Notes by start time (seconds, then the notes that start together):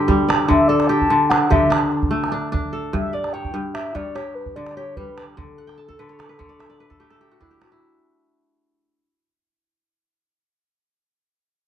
Already playing: G2 D3 G4
0.08 G3, calabash thump
0.28 D5, calabash click
0.48 D3 E5, calabash thump
0.68 A4 D5
0.80 calabash click
0.87 G4 A5
1.02 calabash thump
1.10 D3
1.30 D4 F#5, calabash click
1.50 D3 G4 E5, calabash thump
1.70 D4, calabash click
1.92 calabash click
2.03 calabash thump
2.11 A3
2.24 calabash click
2.32 D4
2.52 D4, calabash thump
2.73 A4
2.93 G2 E5, calabash thump
3.13 D5
3.24 calabash click
3.33 C#5 G5
3.45 calabash thump
3.54 G2
3.74 G4 E5, calabash click
3.95 G2 C#5 D5, calabash thump
4.15 G4 C#5, calabash click
4.35 B4, calabash click
4.46 calabash thump
4.56 D3 D5
4.67 calabash click
4.76 G4 C#5
4.96 G3 B4, calabash thump
5.16 B4 D5, calabash click
5.36 D3 A4, calabash thump
5.58 F#5
5.67 G5, calabash click
5.78 A5, calabash click
5.88 A4, calabash thump
5.99 D3 B4
6.09 C#5
6.19 D5, calabash click
6.29 B4
6.39 D3 C#5, calabash thump
6.49 D5
6.59 E5, calabash click
6.70 D5
6.80 B4, calabash click
6.90 A4, calabash thump
7.00 A3 G4, calabash click
7.10 A4, calabash click
7.21 G4
7.31 F#4
7.40 D4 E4, calabash thump, calabash click
7.51 G4
7.61 F#4, calabash click
7.72 E4